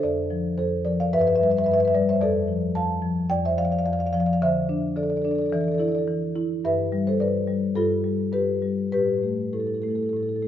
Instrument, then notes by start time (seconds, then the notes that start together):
marimba
0.03 F2 A4 D5
0.30 F3
0.58 F2 A4 C5
0.85 F3 A#4 D5
1.00 D5 F5
1.13 G2 B4 E5
1.19 B4 E5
1.27 B4 E5
1.35 B4 E5
1.41 G3 B4 E5
1.50 B4 E5
1.57 B4 E5
1.64 G2 B4 E5
1.71 B4 E5
1.79 B4 E5
1.85 B4 E5
1.94 G3 B4 D5
2.09 C5 E5
2.21 F2 A4 D5
2.48 F3
2.75 F2 F5 A5
3.02 F3
3.30 F2 D5 G5
3.46 C5 E5
3.58 F3 D5 F5
3.65 D5 F5
3.71 D5 F5
3.78 D5 F5
3.85 F2 D5 F5
3.92 D5 F5
3.99 D5 F5
4.06 D5 F5
4.13 F3 D5 F5
4.19 D5 F5
4.26 D5 F5
4.33 D5 F5
4.42 D3 C5 E5
4.69 D4
4.96 D3 A4 D5
5.03 A4 D5
5.10 A4 D5
5.17 A4 D5
5.22 D4 A4 D5
5.29 A4 D5
5.35 A4 D5
5.42 A4
5.46 A4 D5
5.52 E3 D5
5.57 A4 D5
5.64 A4 D5
5.71 A4 D5
5.78 E4 A4 D5
5.84 A4 D5
5.92 A4 D5
5.98 A4
6.07 E3
6.36 E4
6.65 G2 B4 E5
6.92 G3
7.07 A4 C5
7.20 G2 B4 D5
7.47 G3
7.76 G2 F4 A4
8.04 G3
8.33 G2 G4 B4
8.62 G3
8.92 A2 G4 B4
9.23 A3
9.53 A2 E4 A4
9.60 E4 A4
9.67 E4 A4
9.74 E4 A4
9.82 A3 E4 A4
9.88 E4 A4
9.95 E4 A4
10.03 E4 A4
10.09 A2 E4 A4
10.17 E4 A4
10.23 A4
10.27 E4 A4
10.35 E4 A4
10.42 A3 E4 A4